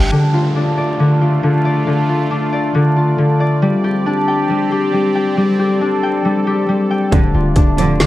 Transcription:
Already playing: 808-style bass G1, harp G3 D4 G4 G5, reverse cymbal
0.12 harp D3, analog synth pad A3 F4 D5, downlifter
0.34 harp F4
0.55 harp D4
0.77 harp D5
0.99 harp D3
1.21 harp F4
1.43 harp D3
1.65 harp D5
1.87 harp D3
2.09 harp F4
2.31 harp D4
2.53 harp D5
2.74 harp D3
2.96 harp F4
3.18 harp D3
3.40 harp D5
3.62 harp G3, analog synth pad C4 G4
3.84 harp G4
4.06 harp D4
4.28 harp G5
4.50 harp G3
4.72 harp G4
4.93 harp G3
5.15 harp G5
5.37 harp G3, analog synth pad A4
5.59 harp G4
5.81 harp D4
6.03 harp G5
6.25 harp G3
6.47 harp G4
6.69 harp G3
6.91 harp G5
7.12 808-style bass D1, string section A1 F2 D3, harp D3, analog synth pad A3 F4, kick, closed hi-hat
7.34 808-style bass D1, harp F4
7.56 808-style bass D1, harp D4, kick, closed hi-hat
7.78 string section A1 F2 D3, harp D5, closed hi-hat
8.00 808-style bass A1, harp D3, snare, closed hi-hat

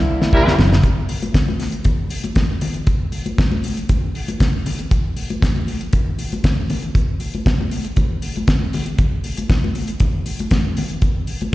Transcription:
Already playing: french horn section D3 A#3 C4 E4
0.22 snare, high conga
0.32 horn section G3 E4 A#4, kick, muted conga
0.48 snare
0.59 fingered electric bass F#1, snare, muted conga, low conga
0.73 snare
0.83 kick, closed hi-hat, low conga
1.09 open hi-hat, muted conga
1.22 closed hi-hat, high conga
1.34 kick, snare, closed hi-hat
1.48 high conga
1.59 snare, open hi-hat, muted conga
1.72 closed hi-hat
1.84 kick, closed hi-hat, low conga
2.10 open hi-hat, muted conga
2.24 closed hi-hat, high conga
2.36 kick, snare, closed hi-hat, high conga
2.61 open hi-hat, muted conga, low conga
2.74 closed hi-hat
2.87 kick, closed hi-hat, muted conga, low conga
3.12 open hi-hat, muted conga
3.26 closed hi-hat, high conga
3.38 kick, snare, closed hi-hat
3.52 high conga
3.63 open hi-hat, muted conga
3.77 closed hi-hat
3.89 kick, closed hi-hat, muted conga, low conga
4.15 open hi-hat
4.28 closed hi-hat, high conga
4.40 kick, snare, closed hi-hat, muted conga, high conga
4.66 open hi-hat, muted conga, low conga
4.79 closed hi-hat
4.91 kick, closed hi-hat, low conga
5.17 open hi-hat, muted conga
5.30 closed hi-hat, high conga
5.42 kick, snare, closed hi-hat, muted conga
5.56 high conga
5.67 open hi-hat, muted conga
5.81 closed hi-hat
5.93 kick, closed hi-hat, muted conga, low conga
6.18 open hi-hat, muted conga
6.32 closed hi-hat, high conga
6.44 kick, snare, closed hi-hat, muted conga, high conga
6.70 open hi-hat, muted conga, low conga
6.82 closed hi-hat
6.95 kick, closed hi-hat, muted conga, low conga
7.20 open hi-hat, muted conga
7.34 closed hi-hat, high conga
7.46 kick, snare, closed hi-hat, muted conga
7.61 high conga
7.71 open hi-hat, muted conga
7.84 closed hi-hat
7.96 kick, closed hi-hat, muted conga, low conga
8.22 open hi-hat, muted conga
8.36 closed hi-hat, high conga
8.47 kick, snare, closed hi-hat, muted conga, high conga
8.73 open hi-hat, muted conga, low conga
8.86 closed hi-hat
8.98 kick, closed hi-hat, low conga
9.24 open hi-hat, muted conga
9.37 closed hi-hat, high conga
9.50 kick, snare, closed hi-hat
9.64 high conga
9.75 open hi-hat, muted conga
9.88 closed hi-hat
10.00 kick, closed hi-hat, muted conga, low conga
10.26 open hi-hat, muted conga
10.39 closed hi-hat, high conga
10.51 kick, snare, closed hi-hat, muted conga, high conga
10.77 open hi-hat, muted conga, low conga
10.89 closed hi-hat
11.02 kick, closed hi-hat, low conga
11.27 open hi-hat
11.41 closed hi-hat, high conga

